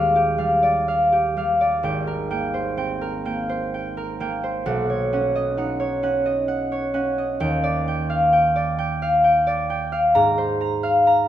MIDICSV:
0, 0, Header, 1, 2, 480
1, 0, Start_track
1, 0, Key_signature, -3, "major"
1, 0, Tempo, 949367
1, 929, Time_signature, 3, 2, 24, 8
1, 2358, Tempo, 913242
1, 5836, End_track
2, 0, Start_track
2, 0, Title_t, "Harp"
2, 0, Program_c, 0, 46
2, 0, Note_on_c, 0, 39, 43
2, 0, Note_on_c, 0, 55, 35
2, 0, Note_on_c, 0, 56, 34
2, 0, Note_on_c, 0, 65, 45
2, 0, Note_on_c, 0, 67, 34
2, 0, Note_on_c, 0, 74, 38
2, 0, Note_on_c, 0, 77, 42
2, 73, Note_off_c, 0, 67, 0
2, 79, Note_on_c, 0, 67, 37
2, 187, Note_off_c, 0, 55, 0
2, 187, Note_off_c, 0, 77, 0
2, 192, Note_on_c, 0, 55, 36
2, 194, Note_on_c, 0, 77, 37
2, 311, Note_off_c, 0, 74, 0
2, 317, Note_on_c, 0, 74, 34
2, 369, Note_off_c, 0, 56, 0
2, 439, Note_off_c, 0, 77, 0
2, 445, Note_on_c, 0, 77, 42
2, 562, Note_off_c, 0, 67, 0
2, 568, Note_on_c, 0, 67, 37
2, 686, Note_off_c, 0, 55, 0
2, 687, Note_off_c, 0, 77, 0
2, 691, Note_on_c, 0, 55, 35
2, 695, Note_on_c, 0, 77, 40
2, 807, Note_off_c, 0, 74, 0
2, 813, Note_on_c, 0, 74, 34
2, 910, Note_off_c, 0, 65, 0
2, 926, Note_on_c, 0, 32, 43
2, 931, Note_on_c, 0, 79, 49
2, 949, Note_off_c, 0, 74, 0
2, 950, Note_off_c, 0, 77, 0
2, 951, Note_off_c, 0, 39, 0
2, 1048, Note_on_c, 0, 70, 35
2, 1159, Note_off_c, 0, 79, 0
2, 1165, Note_on_c, 0, 58, 34
2, 1167, Note_on_c, 0, 79, 40
2, 1283, Note_on_c, 0, 72, 40
2, 1396, Note_off_c, 0, 79, 0
2, 1401, Note_on_c, 0, 60, 33
2, 1403, Note_on_c, 0, 79, 43
2, 1518, Note_off_c, 0, 70, 0
2, 1524, Note_on_c, 0, 70, 37
2, 1638, Note_off_c, 0, 58, 0
2, 1641, Note_off_c, 0, 79, 0
2, 1644, Note_on_c, 0, 58, 36
2, 1647, Note_on_c, 0, 79, 41
2, 1760, Note_off_c, 0, 72, 0
2, 1766, Note_on_c, 0, 72, 39
2, 1816, Note_off_c, 0, 60, 0
2, 1885, Note_off_c, 0, 79, 0
2, 1891, Note_on_c, 0, 79, 41
2, 2001, Note_off_c, 0, 70, 0
2, 2007, Note_on_c, 0, 70, 39
2, 2120, Note_off_c, 0, 58, 0
2, 2120, Note_off_c, 0, 79, 0
2, 2125, Note_on_c, 0, 58, 38
2, 2128, Note_on_c, 0, 79, 41
2, 2236, Note_off_c, 0, 72, 0
2, 2242, Note_on_c, 0, 72, 39
2, 2355, Note_on_c, 0, 35, 45
2, 2357, Note_on_c, 0, 78, 54
2, 2378, Note_off_c, 0, 32, 0
2, 2378, Note_off_c, 0, 58, 0
2, 2378, Note_off_c, 0, 70, 0
2, 2378, Note_off_c, 0, 72, 0
2, 2378, Note_off_c, 0, 79, 0
2, 2379, Note_off_c, 0, 67, 0
2, 2380, Note_off_c, 0, 55, 0
2, 2480, Note_on_c, 0, 73, 35
2, 2596, Note_off_c, 0, 78, 0
2, 2602, Note_on_c, 0, 61, 35
2, 2604, Note_on_c, 0, 78, 41
2, 2721, Note_on_c, 0, 75, 41
2, 2832, Note_off_c, 0, 78, 0
2, 2836, Note_on_c, 0, 63, 34
2, 2840, Note_on_c, 0, 78, 42
2, 2947, Note_off_c, 0, 73, 0
2, 2954, Note_on_c, 0, 73, 37
2, 3070, Note_off_c, 0, 78, 0
2, 3071, Note_off_c, 0, 61, 0
2, 3075, Note_on_c, 0, 61, 37
2, 3078, Note_on_c, 0, 78, 41
2, 3189, Note_off_c, 0, 75, 0
2, 3195, Note_on_c, 0, 75, 41
2, 3240, Note_off_c, 0, 63, 0
2, 3306, Note_off_c, 0, 78, 0
2, 3312, Note_on_c, 0, 78, 43
2, 3431, Note_off_c, 0, 73, 0
2, 3437, Note_on_c, 0, 73, 43
2, 3547, Note_off_c, 0, 78, 0
2, 3549, Note_off_c, 0, 61, 0
2, 3553, Note_on_c, 0, 61, 41
2, 3555, Note_on_c, 0, 78, 41
2, 3675, Note_off_c, 0, 75, 0
2, 3682, Note_on_c, 0, 75, 37
2, 3797, Note_on_c, 0, 39, 46
2, 3799, Note_on_c, 0, 79, 54
2, 3817, Note_off_c, 0, 35, 0
2, 3819, Note_off_c, 0, 78, 0
2, 3820, Note_off_c, 0, 61, 0
2, 3822, Note_off_c, 0, 73, 0
2, 3920, Note_on_c, 0, 74, 40
2, 4041, Note_off_c, 0, 79, 0
2, 4047, Note_on_c, 0, 79, 43
2, 4162, Note_on_c, 0, 77, 44
2, 4277, Note_off_c, 0, 79, 0
2, 4283, Note_on_c, 0, 79, 47
2, 4398, Note_off_c, 0, 74, 0
2, 4404, Note_on_c, 0, 74, 41
2, 4518, Note_off_c, 0, 79, 0
2, 4524, Note_on_c, 0, 79, 45
2, 4641, Note_off_c, 0, 77, 0
2, 4648, Note_on_c, 0, 77, 44
2, 4757, Note_off_c, 0, 79, 0
2, 4763, Note_on_c, 0, 79, 51
2, 4877, Note_off_c, 0, 74, 0
2, 4883, Note_on_c, 0, 74, 48
2, 4998, Note_off_c, 0, 79, 0
2, 5004, Note_on_c, 0, 79, 48
2, 5115, Note_off_c, 0, 77, 0
2, 5121, Note_on_c, 0, 77, 46
2, 5240, Note_on_c, 0, 82, 65
2, 5243, Note_on_c, 0, 44, 54
2, 5254, Note_off_c, 0, 39, 0
2, 5257, Note_off_c, 0, 74, 0
2, 5258, Note_off_c, 0, 79, 0
2, 5361, Note_on_c, 0, 72, 42
2, 5476, Note_off_c, 0, 82, 0
2, 5482, Note_on_c, 0, 82, 48
2, 5594, Note_off_c, 0, 77, 0
2, 5600, Note_on_c, 0, 77, 47
2, 5718, Note_off_c, 0, 82, 0
2, 5725, Note_on_c, 0, 82, 52
2, 5731, Note_off_c, 0, 75, 0
2, 5836, Note_off_c, 0, 44, 0
2, 5836, Note_off_c, 0, 72, 0
2, 5836, Note_off_c, 0, 77, 0
2, 5836, Note_off_c, 0, 82, 0
2, 5836, End_track
0, 0, End_of_file